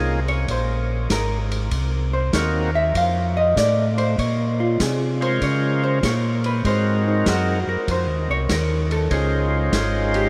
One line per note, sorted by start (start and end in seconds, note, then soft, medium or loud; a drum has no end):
0.00 0.46 C2 medium
0.00 0.20 A#3 medium
0.00 0.20 C#4 medium
0.00 0.20 D#4 medium
0.00 0.20 F4 medium
0.00 0.20 G#4 medium
0.28 0.48 C#5 medium
0.28 ride soft
0.48 1.08 A#1 medium
0.48 1.07 C5 medium
0.48 kick soft
0.48 ride medium
1.10 1.70 G#1 medium
1.10 1.36 A#4 medium
1.10 kick soft
1.10 snare medium
1.10 hi-hat pedal medium
1.10 ride medium
1.52 ride soft
1.71 2.31 C2 medium
1.71 kick soft
1.71 ride medium
2.13 2.33 C5 medium
2.33 2.93 D#2 medium
2.33 2.70 A#3 medium
2.33 2.71 C4 medium
2.33 2.71 D#4 medium
2.33 2.71 F#4 medium
2.33 2.71 A#4 medium
2.33 2.74 C#5 medium
2.33 kick soft
2.33 snare medium
2.33 hi-hat pedal medium
2.33 ride medium
2.75 2.95 E5 loud
2.94 3.54 F2 medium
2.94 3.36 F5 medium
2.94 kick soft
2.94 ride medium
3.37 3.56 D#5 medium
3.56 4.16 A2 medium
3.56 3.97 D5 medium
3.56 kick soft
3.56 snare medium
3.56 hi-hat pedal medium
3.56 ride medium
3.98 4.17 C5 medium
3.98 ride soft
4.18 4.78 A#2 medium
4.18 4.59 C#5 medium
4.18 kick soft
4.18 ride medium
4.60 4.79 F4 medium
4.80 5.39 C3 medium
4.80 5.21 G#4 medium
4.80 kick soft
4.80 snare medium
4.80 hi-hat pedal medium
4.80 ride medium
5.21 5.99 G#3 medium
5.21 5.99 F4 medium
5.21 5.99 A#4 medium
5.21 5.99 C5 medium
5.21 5.41 C5 medium
5.21 5.99 C#5 medium
5.21 ride soft
5.41 6.01 C#3 medium
5.41 5.82 C#5 medium
5.41 kick soft
5.41 ride medium
5.84 6.03 C5 loud
6.03 6.63 A#2 medium
6.03 6.44 C#5 loud
6.03 kick soft
6.03 snare medium
6.03 hi-hat pedal medium
6.03 ride medium
6.44 6.65 B4 medium
6.44 ride soft
6.64 7.24 G#2 medium
6.64 7.59 G#3 medium
6.64 7.59 C4 medium
6.64 7.60 D#4 medium
6.64 7.60 F#4 medium
6.64 7.60 A#4 medium
6.64 7.06 C5 medium
6.64 kick soft
6.64 ride medium
7.08 7.26 D#4 soft
7.26 7.64 F#2 medium
7.26 7.67 F#4 medium
7.26 kick soft
7.26 snare medium
7.26 hi-hat pedal medium
7.26 ride medium
7.67 7.77 F#2 soft
7.67 7.88 A#4 medium
7.87 8.07 F2 medium
7.87 8.30 C5 medium
7.87 kick soft
7.87 ride medium
8.07 8.28 D#2 medium
8.29 8.48 C2 medium
8.29 8.50 C#5 loud
8.49 9.09 D#2 medium
8.49 8.91 A#4 medium
8.49 kick soft
8.49 snare medium
8.49 hi-hat pedal medium
8.49 ride medium
8.91 9.11 A4 medium
8.91 ride soft
9.11 9.71 C#2 medium
9.11 10.29 G#3 medium
9.11 10.29 C#4 medium
9.11 10.29 D#4 medium
9.11 10.29 F4 medium
9.11 10.11 G#4 medium
9.11 10.29 C5 medium
9.11 kick soft
9.11 ride medium
9.72 10.29 G#1 medium
9.72 kick soft
9.72 snare medium
9.72 hi-hat pedal medium
9.72 ride medium
10.14 10.29 G4 medium
10.14 ride soft